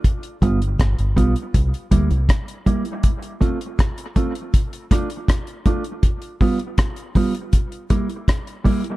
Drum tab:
HH |xxxxxxxxxxxxxxxx|xxxxxxxxxxxxxxxx|xxoxxxoxxxxxxxox|
SD |----r-------r---|----r-----r-r---|----r-------r---|
BD |o-o-o-o-o-o-o-o-|o-o-o-o-o-o-o-o-|o-o-o-o-o-o-o-o-|